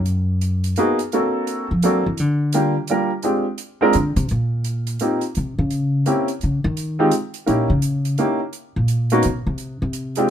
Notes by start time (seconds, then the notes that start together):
Already playing: F#2
0.06 closed hi-hat
0.41 closed hi-hat
0.64 closed hi-hat
0.76 A#3 B3 D#4 F#4 G#4, closed hi-hat
0.99 closed hi-hat
1.12 A#3 C4 D4 F#4 A4, closed hi-hat
1.47 closed hi-hat
1.71 F3
1.82 F#3 A#3 C4 D4 F#4 A4, closed hi-hat
2.06 E3
2.17 D3, closed hi-hat
2.52 G3 A#3 D4 F4 G4, closed hi-hat
2.87 G3 A#3 D4 F4 A#4, closed hi-hat
3.22 G#3 C4 D4 F4 G4, closed hi-hat
3.58 closed hi-hat
3.81 G#3 C4 D4 F4 A#4
3.93 D3, closed hi-hat
4.16 C3, closed hi-hat
4.29 A#2, closed hi-hat
4.64 closed hi-hat
4.87 closed hi-hat
4.99 A#3 C4 D#4 F4 G4, closed hi-hat
5.21 closed hi-hat
5.35 C3, closed hi-hat
5.59 C#3
5.70 closed hi-hat
6.06 A#3 C4 C#4 E4 G4, closed hi-hat
6.28 closed hi-hat
6.41 C#3, closed hi-hat
6.64 D#3
6.77 closed hi-hat
6.99 G#3 C4 D#4 F4 G4
7.11 closed hi-hat
7.34 closed hi-hat
7.46 A#2 A#3 C#4 D#4 E4 G4, closed hi-hat
7.70 C#3
7.82 closed hi-hat
8.05 closed hi-hat
8.18 A#3 C#4 D#4 E4 G4, closed hi-hat
8.53 closed hi-hat
8.76 A#2
8.88 closed hi-hat
9.10 A#3 B3 C#4 D#4 F#4, closed hi-hat
9.23 B2, closed hi-hat
9.47 C3
9.58 closed hi-hat
9.82 C3
9.93 closed hi-hat
10.15 G#3 C4 D4 F4 G4, closed hi-hat